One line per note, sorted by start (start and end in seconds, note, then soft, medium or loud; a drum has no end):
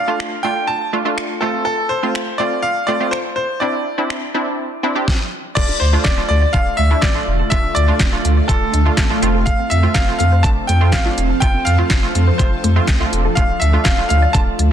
0.00 0.45 F5 medium
0.08 0.34 A3 medium
0.08 0.34 D4 medium
0.08 0.34 F4 medium
0.20 finger snap loud
0.43 0.79 A3 medium
0.43 0.79 D4 medium
0.43 0.79 F4 medium
0.43 0.69 G5 loud
0.67 0.91 A5 loud
0.93 1.02 A3 medium
0.93 1.02 D4 medium
0.93 1.02 F4 medium
1.05 1.41 A3 medium
1.05 1.42 D4 medium
1.05 1.41 F4 medium
1.18 finger snap loud
1.41 1.91 A3 medium
1.41 1.91 C4 medium
1.41 1.91 F4 medium
1.41 1.63 A4 medium
1.65 1.91 A4 medium
1.89 2.40 C5 medium
2.03 2.29 A3 medium
2.03 2.29 C4 medium
2.03 2.29 F4 medium
2.15 finger snap loud
2.38 2.74 A3 medium
2.38 2.74 C4 medium
2.38 2.75 F4 medium
2.38 2.64 D5 loud
2.62 2.86 F5 loud
2.87 2.97 A3 medium
2.87 2.97 C4 medium
2.87 2.97 F4 medium
2.87 3.13 D5 medium
3.00 3.44 A3 medium
3.00 3.44 C4 medium
3.00 3.44 F4 medium
3.11 3.17 C5 medium
3.11 finger snap loud
3.36 3.59 C5 medium
3.60 3.88 C4 medium
3.60 3.88 D4 medium
3.60 3.88 E4 medium
3.60 5.03 D5 medium
3.98 4.24 C4 medium
3.98 4.24 D4 medium
3.98 4.24 E4 medium
4.10 finger snap loud
4.34 4.69 C4 medium
4.34 4.70 D4 medium
4.34 4.70 E4 medium
4.83 4.92 C4 medium
4.83 4.92 D4 medium
4.83 4.92 E4 loud
4.95 5.08 C4 medium
4.95 5.08 D4 medium
4.95 5.08 G4 loud
5.08 kick loud
5.08 snare medium
5.55 5.73 D1 loud
5.55 9.19 D3 medium
5.55 5.83 A3 medium
5.55 5.66 A3 medium
5.55 9.19 A3 medium
5.55 5.83 D4 medium
5.55 9.19 F4 medium
5.55 5.83 F4 medium
5.55 5.79 D5 loud
5.55 kick loud
5.55 crash medium
5.69 5.78 D4 medium
5.80 5.97 D2 loud
5.80 6.06 C5 medium
5.93 6.10 A3 medium
5.93 6.11 D4 medium
5.93 6.02 F4 medium
5.93 6.11 F4 medium
6.04 6.21 D1 loud
6.04 6.14 A3 medium
6.04 6.27 D5 loud
6.04 kick loud
6.04 snare medium
6.04 clap loud
6.17 6.44 A3 medium
6.17 6.44 D4 medium
6.17 6.44 F4 medium
6.29 6.46 D2 loud
6.29 6.39 A3 medium
6.29 6.54 D5 loud
6.42 6.51 D5 medium
6.53 6.70 D1 loud
6.53 6.80 A3 medium
6.53 6.80 D4 medium
6.53 6.80 F4 medium
6.53 6.79 F5 loud
6.53 kick loud
6.77 6.94 D2 loud
6.77 6.88 A3 medium
6.77 7.03 E5 loud
6.91 7.08 A3 medium
6.91 7.08 D4 medium
6.91 7.08 E4 medium
7.01 7.19 A1 medium
7.01 7.12 A3 medium
7.01 7.52 D5 medium
7.01 kick loud
7.01 snare medium
7.01 clap loud
7.15 7.41 A3 medium
7.15 7.41 D4 medium
7.15 7.24 F4 medium
7.15 7.41 F4 medium
7.27 7.43 E1 loud
7.40 7.49 A4 medium
7.50 7.68 D1 loud
7.50 7.78 A3 medium
7.50 7.61 A3 medium
7.50 7.78 D4 medium
7.50 7.78 F4 medium
7.50 7.74 E5 loud
7.50 kick loud
7.50 closed hi-hat medium
7.64 7.73 D4 medium
7.75 7.92 D2 medium
7.75 8.51 D5 loud
7.75 closed hi-hat medium
7.88 8.06 A3 medium
7.88 8.06 D4 medium
7.88 7.97 F4 medium
7.88 8.06 F4 medium
7.99 8.16 D1 loud
7.99 8.10 A3 medium
7.99 kick loud
7.99 snare loud
7.99 clap loud
7.99 closed hi-hat medium
8.12 8.39 A3 medium
8.12 8.39 D4 medium
8.12 8.39 F4 medium
8.25 8.41 D2 medium
8.25 8.34 A3 medium
8.25 closed hi-hat soft
8.37 8.46 D5 medium
8.48 8.65 D1 loud
8.48 8.75 A3 medium
8.48 8.75 D4 medium
8.48 8.76 F4 medium
8.48 9.18 A4 medium
8.48 kick loud
8.48 closed hi-hat medium
8.73 8.89 D2 medium
8.73 8.83 A3 medium
8.73 closed hi-hat medium
8.85 9.03 A3 medium
8.85 9.03 D4 medium
8.85 9.03 F4 medium
8.97 9.14 A1 medium
8.97 9.07 A3 medium
8.97 kick loud
8.97 snare medium
8.97 clap loud
8.97 closed hi-hat medium
9.10 9.21 A3 medium
9.10 9.22 D4 medium
9.10 9.19 F4 medium
9.10 9.21 F4 loud
9.22 9.54 F1 loud
9.22 13.33 F3 medium
9.22 9.71 A3 medium
9.22 9.71 C4 medium
9.22 11.16 C4 medium
9.22 9.71 F4 loud
9.22 13.33 A4 medium
9.22 closed hi-hat soft
9.35 9.44 A4 medium
9.46 9.56 A3 medium
9.46 9.71 F5 medium
9.46 kick loud
9.46 closed hi-hat medium
9.59 9.68 C4 medium
9.70 9.87 F2 loud
9.70 9.96 E5 medium
9.70 closed hi-hat medium
9.83 10.01 A3 medium
9.83 10.01 C4 medium
9.83 10.01 F4 medium
9.83 9.93 F4 medium
9.94 10.11 F1 loud
9.94 10.05 A3 medium
9.94 10.17 F5 loud
9.94 kick loud
9.94 snare loud
9.94 clap loud
9.94 closed hi-hat medium
10.07 10.34 A3 medium
10.07 10.34 C4 medium
10.07 10.34 F4 medium
10.19 10.46 F2 loud
10.19 10.29 A3 medium
10.19 10.44 F5 loud
10.19 closed hi-hat soft
10.32 10.41 C5 medium
10.43 10.60 F1 loud
10.43 10.70 A3 medium
10.43 10.71 C4 medium
10.43 10.71 D4 medium
10.43 10.49 A5 loud
10.43 kick loud
10.43 closed hi-hat medium
10.67 10.95 F2 loud
10.67 10.78 A3 medium
10.67 10.93 G5 loud
10.67 closed hi-hat medium
10.81 10.98 A3 medium
10.81 10.98 C4 medium
10.81 10.98 F4 medium
10.92 11.09 G1 loud
10.92 11.02 A3 medium
10.92 11.43 F5 loud
10.92 kick loud
10.92 snare medium
10.92 clap loud
10.92 closed hi-hat medium
11.05 11.31 A3 medium
11.05 11.31 C4 medium
11.05 11.32 D4 medium
11.05 11.15 F4 medium
11.17 11.33 E1 medium
11.17 13.35 D4 medium
11.17 closed hi-hat medium
11.30 11.39 A4 medium
11.40 11.58 F1 loud
11.40 11.68 A3 medium
11.40 11.51 A3 loud
11.40 11.68 C4 medium
11.40 11.68 F4 medium
11.40 11.66 G5 loud
11.40 kick loud
11.40 closed hi-hat medium
11.54 11.63 C4 medium
11.65 11.82 F2 loud
11.65 12.41 F5 loud
11.65 closed hi-hat medium
11.78 11.96 A3 medium
11.78 11.96 C4 medium
11.78 11.88 F4 medium
11.78 11.96 F4 medium
11.90 12.07 F1 loud
11.90 12.00 A3 medium
11.90 kick loud
11.90 snare loud
11.90 clap loud
11.90 closed hi-hat medium
12.03 12.29 A3 medium
12.03 12.29 C4 medium
12.03 12.29 F4 medium
12.15 12.31 F2 loud
12.15 12.24 A3 medium
12.15 closed hi-hat soft
12.27 12.36 C5 medium
12.38 12.55 F1 loud
12.38 12.66 A3 medium
12.38 12.66 C4 medium
12.38 12.66 F4 medium
12.38 13.08 C5 medium
12.38 kick loud
12.38 closed hi-hat medium
12.64 12.80 F2 medium
12.64 12.73 A3 medium
12.64 closed hi-hat medium
12.76 12.93 A3 medium
12.76 12.94 C4 medium
12.76 12.94 F4 medium
12.87 13.04 C2 medium
12.87 12.97 A3 medium
12.87 kick loud
12.87 snare medium
12.87 clap loud
12.87 closed hi-hat medium
13.00 13.26 A3 medium
13.00 13.27 C4 medium
13.00 13.10 F4 medium
13.00 13.27 F4 loud
13.13 13.28 E1 medium
13.13 closed hi-hat medium
13.25 13.34 A4 medium
13.35 13.53 D1 loud
13.35 14.72 D3 medium
13.35 13.63 A3 medium
13.35 14.72 A3 medium
13.35 13.46 A3 medium
13.35 13.63 D4 medium
13.35 14.72 F4 medium
13.35 13.63 F4 medium
13.35 13.61 F5 medium
13.35 kick loud
13.35 closed hi-hat medium
13.49 13.58 D4 medium
13.60 13.77 D2 loud
13.60 13.86 E5 medium
13.60 closed hi-hat medium
13.73 13.91 A3 medium
13.73 13.91 D4 medium
13.73 13.83 F4 medium
13.73 13.91 F4 medium
13.84 14.02 D1 loud
13.84 13.95 A3 medium
13.84 14.07 F5 medium
13.84 kick loud
13.84 snare loud
13.84 clap loud
13.84 closed hi-hat medium
13.98 14.24 A3 medium
13.98 14.24 D4 medium
13.98 14.24 F4 medium
14.09 14.26 D2 loud
14.09 14.19 A3 medium
14.09 14.35 F5 medium
14.09 closed hi-hat soft
14.22 14.31 D5 medium
14.33 14.50 D1 loud
14.33 14.61 A3 medium
14.33 14.61 D4 medium
14.33 14.61 F4 medium
14.33 14.39 A5 loud
14.33 kick loud
14.33 closed hi-hat medium
14.59 14.72 D2 loud
14.59 14.68 A3 medium
14.59 closed hi-hat medium